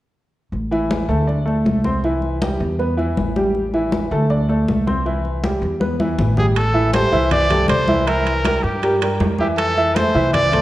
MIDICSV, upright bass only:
0, 0, Header, 1, 2, 480
1, 0, Start_track
1, 0, Key_signature, 0, "minor"
1, 0, Tempo, 377358
1, 670, Time_signature, 4, 2, 24, 8
1, 13505, End_track
2, 0, Start_track
2, 0, Title_t, "Upright bass"
2, 0, Program_c, 0, 32
2, 663, Note_on_c, 0, 33, 79
2, 1337, Note_off_c, 0, 33, 0
2, 1382, Note_on_c, 0, 38, 87
2, 2057, Note_off_c, 0, 38, 0
2, 2105, Note_on_c, 0, 36, 81
2, 3235, Note_off_c, 0, 36, 0
2, 3308, Note_on_c, 0, 40, 89
2, 3980, Note_off_c, 0, 40, 0
2, 4036, Note_on_c, 0, 33, 82
2, 5159, Note_off_c, 0, 33, 0
2, 5230, Note_on_c, 0, 38, 92
2, 5900, Note_off_c, 0, 38, 0
2, 5955, Note_on_c, 0, 36, 82
2, 7077, Note_off_c, 0, 36, 0
2, 7145, Note_on_c, 0, 40, 89
2, 7816, Note_off_c, 0, 40, 0
2, 7863, Note_on_c, 0, 33, 81
2, 8990, Note_off_c, 0, 33, 0
2, 9064, Note_on_c, 0, 36, 88
2, 9735, Note_off_c, 0, 36, 0
2, 9786, Note_on_c, 0, 36, 85
2, 10912, Note_off_c, 0, 36, 0
2, 10984, Note_on_c, 0, 43, 89
2, 11656, Note_off_c, 0, 43, 0
2, 11701, Note_on_c, 0, 41, 85
2, 12831, Note_off_c, 0, 41, 0
2, 12903, Note_on_c, 0, 36, 98
2, 13505, Note_off_c, 0, 36, 0
2, 13505, End_track
0, 0, End_of_file